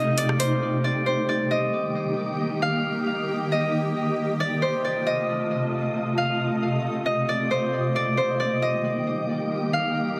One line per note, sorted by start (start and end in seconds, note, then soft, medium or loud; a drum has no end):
0.00 0.58 C3 medium
0.00 0.58 A3 medium
0.00 0.59 A3 medium
0.00 0.58 D#4 medium
0.00 0.59 F4 medium
0.00 0.60 G4 medium
0.00 0.24 D#5 medium
0.00 0.60 F5 medium
0.00 0.73 F5 medium
0.18 0.84 D5 medium
0.18 closed hi-hat medium
0.29 cross-stick medium
0.39 1.06 C5 medium
0.39 closed hi-hat medium
0.62 4.14 D#3 medium
0.62 4.14 G3 medium
0.62 4.14 A#3 medium
0.62 4.14 D#4 medium
0.62 4.14 G4 medium
0.62 10.20 D#5 medium
0.62 4.14 D6 medium
0.84 1.28 D5 medium
1.06 3.04 C5 medium
1.29 1.57 D5 medium
1.51 3.29 D#5 medium
2.62 4.29 F5 medium
3.52 4.46 D#5 medium
4.18 7.70 C3 medium
4.18 7.70 A3 medium
4.18 5.94 F4 medium
4.18 7.70 F4 medium
4.18 7.70 D#5 medium
4.40 4.84 D5 medium
4.62 6.60 C5 medium
4.84 5.13 D5 medium
5.07 6.85 D#5 medium
5.95 7.71 G4 medium
6.18 7.84 F5 medium
7.06 7.35 D#5 medium
7.29 7.95 D5 medium
7.51 8.17 C5 medium
7.73 10.20 D#3 medium
7.73 10.20 G3 medium
7.73 10.20 A#3 medium
7.73 10.20 D#4 medium
7.73 10.20 G4 medium
7.73 10.20 D6 medium
7.96 8.39 D5 medium
8.17 10.15 C5 medium
8.40 8.68 D5 medium
8.62 10.20 D#5 medium
9.73 10.20 F5 medium